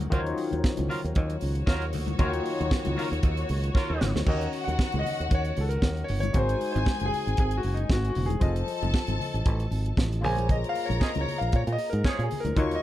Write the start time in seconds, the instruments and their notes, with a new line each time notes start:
Already playing: tine electric piano D#3 F#3 C#4 D#4 C#5
0.01 closed hi-hat
0.10 fingered electric bass D#2, tine electric piano D#3 D#4 F4 F#4 C5, horn section F#3 F4 A#4, kick, closed hi-hat, muted conga, low conga
0.19 tine electric piano C#5
0.26 closed hi-hat
0.36 open hi-hat, muted conga
0.51 fingered electric bass D#2, closed hi-hat, high conga
0.64 kick, snare
0.77 fingered electric bass C#2, closed hi-hat, high conga
0.88 horn section F#3 F4 A#4, open hi-hat, muted conga, low conga
1.04 fingered electric bass D#2, closed hi-hat
1.15 fingered electric bass D#2, string section A#3 F#4 C#5, kick, closed hi-hat, muted conga
1.30 closed hi-hat
1.40 fingered electric bass C#2, open hi-hat, muted conga
1.55 closed hi-hat
1.67 fingered electric bass D#2, horn section F#3 F4 A#4, kick, snare
1.82 closed hi-hat
1.93 fingered electric bass D2, open hi-hat, muted conga, low conga
2.07 closed hi-hat, high conga
2.19 fingered electric bass D#2, tine electric piano D#3 D#4 F4 F#4 C#5, horn section F#3 F4 A#4, kick, closed hi-hat, muted conga, low conga
2.33 closed hi-hat
2.46 open hi-hat
2.60 fingered electric bass D#2, closed hi-hat, high conga
2.71 kick, snare, muted conga
2.85 fingered electric bass C#2, closed hi-hat, high conga
2.97 horn section F#3 F4 A#4, open hi-hat, muted conga, low conga
3.12 fingered electric bass D#2, closed hi-hat
3.23 fingered electric bass D#2, kick, closed hi-hat
3.37 closed hi-hat
3.49 fingered electric bass C#2, open hi-hat
3.64 closed hi-hat
3.75 horn section F#3 F4 A#4, kick, snare, muted conga
3.90 fingered electric bass D#2
4.01 fingered electric bass G#1, snare, low conga
4.15 fingered electric bass D2, snare, high conga
4.26 fingered electric bass D#2, tine electric piano D#3 C#4 D#4 F#4 C#5, string section F#4 F#5, grand piano D#5, kick, crash, muted conga, low conga
4.41 closed hi-hat
4.53 open hi-hat
4.64 fingered electric bass D#2, grand piano F#5, high conga
4.68 closed hi-hat
4.79 kick, snare, muted conga
4.92 fingered electric bass C#2, closed hi-hat, high conga
4.99 grand piano D#5
5.05 open hi-hat, muted conga, low conga
5.20 fingered electric bass D#2, closed hi-hat
5.31 fingered electric bass D#2, grand piano C#5, kick, closed hi-hat, muted conga
5.45 closed hi-hat
5.56 fingered electric bass C#2, open hi-hat, muted conga
5.61 grand piano A4
5.69 grand piano A#4, closed hi-hat
5.82 fingered electric bass D#2, kick, snare, muted conga, high conga
5.97 closed hi-hat
6.04 grand piano C#5
6.08 fingered electric bass G1, open hi-hat, low conga
6.20 grand piano C#5, closed hi-hat, high conga
6.33 fingered electric bass G#1, tine electric piano G#3 D#4 F#4 A#4 C5, string section G#4 G#5, kick, closed hi-hat, low conga
6.39 grand piano C5
6.49 closed hi-hat
6.61 open hi-hat, muted conga
6.72 fingered electric bass G#1, grand piano C5, closed hi-hat, high conga
6.86 kick, snare, muted conga
7.00 fingered electric bass F#1, closed hi-hat, high conga
7.06 grand piano G#4
7.12 open hi-hat, muted conga, low conga
7.27 fingered electric bass G#1, closed hi-hat
7.37 fingered electric bass G#1, grand piano G#4, kick, closed hi-hat
7.51 closed hi-hat
7.57 grand piano F#4
7.63 fingered electric bass F#1, open hi-hat, muted conga
7.74 grand piano D#4, closed hi-hat
7.90 fingered electric bass G#1, grand piano F#4, kick, snare, muted conga, high conga
8.05 closed hi-hat
8.10 grand piano F#4
8.15 fingered electric bass E1, open hi-hat, muted conga, low conga
8.26 grand piano G#4, high conga
8.30 closed hi-hat
8.40 fingered electric bass F1, tine electric piano F3 F4 A4 C5 D#5, string section A4 A5, kick, closed hi-hat, low conga
8.56 closed hi-hat
8.67 open hi-hat, muted conga
8.82 fingered electric bass F1, closed hi-hat, high conga
8.94 kick, snare, muted conga
9.07 fingered electric bass G#1, closed hi-hat, high conga
9.20 open hi-hat, muted conga, low conga
9.34 fingered electric bass A1, closed hi-hat
9.46 fingered electric bass A1, kick, closed hi-hat, muted conga
9.60 closed hi-hat
9.71 fingered electric bass G#1, open hi-hat, muted conga
9.86 closed hi-hat
9.97 fingered electric bass A1, kick, snare, muted conga, high conga
10.13 closed hi-hat
10.21 fingered electric bass A#1, tine electric piano A#3 F4 G#4 C5 C#5, string section A#4 A#5, open hi-hat, low conga
10.25 grand piano G#5
10.37 closed hi-hat, high conga
10.49 grand piano D#5, kick, closed hi-hat, low conga
10.64 closed hi-hat
10.69 grand piano F5
10.74 open hi-hat, muted conga
10.86 grand piano C#5, high conga
10.90 fingered electric bass A#1, closed hi-hat
11.00 horn section F3 C#4 G#4, grand piano D#5, kick, snare
11.15 fingered electric bass C#2, closed hi-hat, high conga
11.21 grand piano C#5
11.27 open hi-hat, muted conga, low conga
11.38 fingered electric bass A#1, grand piano F5
11.42 closed hi-hat
11.52 fingered electric bass A#2, grand piano C#5, kick, closed hi-hat, muted conga
11.67 fingered electric bass A#2, closed hi-hat
11.72 grand piano D#5
11.78 open hi-hat
11.90 fingered electric bass G#2, grand piano A#4, closed hi-hat
12.04 horn section F3 C#4 G#4, grand piano C#5, kick, snare, muted conga, high conga
12.19 fingered electric bass A#2, closed hi-hat
12.23 grand piano G#4
12.31 open hi-hat, low conga
12.40 grand piano A#4
12.45 fingered electric bass D2, closed hi-hat, high conga
12.55 fingered electric bass D#2, tine electric piano D#3 D#4 F4 F#4 C#5, string section C#5 C#6, kick, closed hi-hat, muted conga, low conga
12.71 grand piano D#5, closed hi-hat